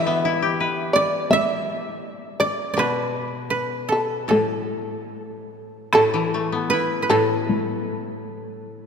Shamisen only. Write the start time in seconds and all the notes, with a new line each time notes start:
Already playing: E5
0.93 D5
1.31 E5
2.40 D5
2.78 B4
3.92 A4
4.31 A4
5.95 A4
7.10 A4